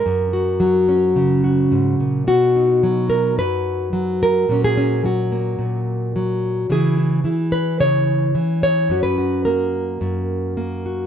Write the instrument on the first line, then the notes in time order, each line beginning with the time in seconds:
nylon-string guitar
Already playing: A#4
0.06 F#2
0.33 F#4
0.60 F#3
0.89 C#4
1.16 C#3
1.44 F#4
1.72 G#2
2.00 A#2
2.27 B2 F#4
2.56 D#4
2.83 F#3
3.10 A#4
3.38 F#2 B4
3.93 F#3
4.23 A#4
4.49 A#2 F#3 A#3 C#4
4.64 G#4
4.77 C#4
5.04 F#3 F#4
5.32 A#3
5.59 A#2
6.16 F#3
6.70 C#3 E3 E4 G#4
6.98 E4
7.24 E3 E4
7.52 B4
7.80 C#3 C#5
8.35 E3
8.63 C#5
8.89 F#2 C#4 F#4
9.03 B4
9.18 F#4
9.45 A#3 A#4
10.01 F#2
10.57 A#3
10.86 F#4